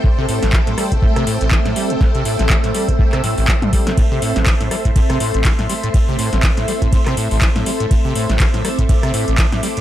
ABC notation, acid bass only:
X:1
M:4/4
L:1/16
Q:"Swing 16ths" 1/4=122
K:Am
V:1 name="Acid bass" clef=bass
A,, C, A,, A,,, E, A,, G, A,, A,, C, A,, A,,, E, A,, G, A,, | A,, C, A,, A,,, E, A,, G, A,, A,, C, A,, A,,, E, A,, G, A,, | A,, C, A,, A,,, E, A,, G, A,, A,, C, A,, A,,, E, A,, G, A,, | A,, C, A,, A,,, E, A,, G, A,, A,, C, A,, A,,, E, A,, G, A,, |
A,, C, A,, A,,, E, A,, G, A,, A,, C, A,, A,,, E, A,, G, A,, |]